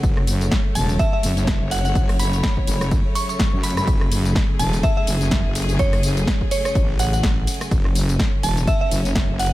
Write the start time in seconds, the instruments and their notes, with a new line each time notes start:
Already playing: string section C#3 F#3 A3
0.03 wobble bass F#1, string section C#5, kick, closed hi-hat, tambourine
0.17 cross-stick
0.27 open hi-hat, ride, tambourine
0.41 closed hi-hat, tambourine
0.51 kick, snare, tambourine
0.75 wobble bass E1, synth bell A5, open hi-hat, ride, tambourine
0.89 closed hi-hat, tambourine
0.99 synth bell E5, kick, closed hi-hat, tambourine
1.13 synth bell E5
1.23 wobble bass F#1, open hi-hat, ride, tambourine
1.37 closed hi-hat, tambourine
1.47 kick, snare, closed hi-hat, tambourine
1.61 wobble bass F#1
1.71 synth bell F#5, open hi-hat, ride, tambourine
1.78 closed hi-hat
1.85 synth bell F#5, closed hi-hat, tambourine
1.95 wobble bass F#1, kick, closed hi-hat, tambourine
2.09 cross-stick, open hi-hat
2.19 synth bell B5, open hi-hat, ride, tambourine
2.33 closed hi-hat, tambourine
2.43 kick, snare, tambourine
2.57 kick
2.67 wobble bass F#1, open hi-hat, ride, tambourine
2.81 cross-stick, closed hi-hat, tambourine
2.91 kick, closed hi-hat, tambourine
3.15 synth bell C#6, open hi-hat, ride, tambourine
3.29 synth bell C#6, closed hi-hat, tambourine
3.39 kick, snare, closed hi-hat, tambourine
3.53 wobble bass F#2
3.63 synth bell B5, open hi-hat, ride, tambourine
3.70 closed hi-hat
3.77 synth bell B5, cross-stick, closed hi-hat, tambourine
3.87 wobble bass F#1, string section G#4, kick, closed hi-hat, tambourine
4.01 cross-stick
4.12 open hi-hat, ride, tambourine
4.25 closed hi-hat, tambourine
4.35 kick, snare, tambourine
4.59 wobble bass E1, synth bell A5, open hi-hat, ride, tambourine
4.73 closed hi-hat, tambourine
4.83 synth bell E5, kick, closed hi-hat, tambourine
4.97 synth bell E5
5.07 wobble bass F#1, open hi-hat, ride, tambourine
5.21 closed hi-hat, tambourine
5.31 kick, snare, closed hi-hat, tambourine
5.45 wobble bass F#1
5.55 open hi-hat, ride, tambourine
5.62 closed hi-hat
5.69 closed hi-hat, tambourine
5.79 wobble bass F#1, synth bell C#5, kick, closed hi-hat, tambourine
5.93 cross-stick, open hi-hat
6.03 open hi-hat, ride, tambourine
6.17 closed hi-hat, tambourine
6.27 kick, snare, tambourine
6.41 kick
6.51 synth bell C#5, open hi-hat, ride, tambourine
6.65 synth bell C#5, cross-stick, closed hi-hat, tambourine
6.75 wobble bass A1, kick, closed hi-hat, tambourine
6.99 synth bell F#5, open hi-hat, ride, tambourine
7.13 synth bell F#5, closed hi-hat, tambourine
7.23 wobble bass A1, kick, snare, closed hi-hat, tambourine
7.47 open hi-hat, ride, tambourine
7.54 closed hi-hat
7.61 cross-stick, closed hi-hat, tambourine
7.71 wobble bass F#1, string section C#4, kick, closed hi-hat, tambourine
7.85 cross-stick
7.95 open hi-hat, ride, tambourine
8.09 closed hi-hat, tambourine
8.19 kick, snare, tambourine
8.43 wobble bass E1, synth bell A5, open hi-hat, ride, tambourine
8.57 closed hi-hat, tambourine
8.67 synth bell E5, kick, closed hi-hat, tambourine
8.81 synth bell E5
8.91 wobble bass F#1, open hi-hat, ride, tambourine
9.05 closed hi-hat, tambourine
9.15 kick, snare, closed hi-hat, tambourine
9.29 wobble bass F#1
9.39 synth bell F#5, open hi-hat, ride, tambourine
9.46 closed hi-hat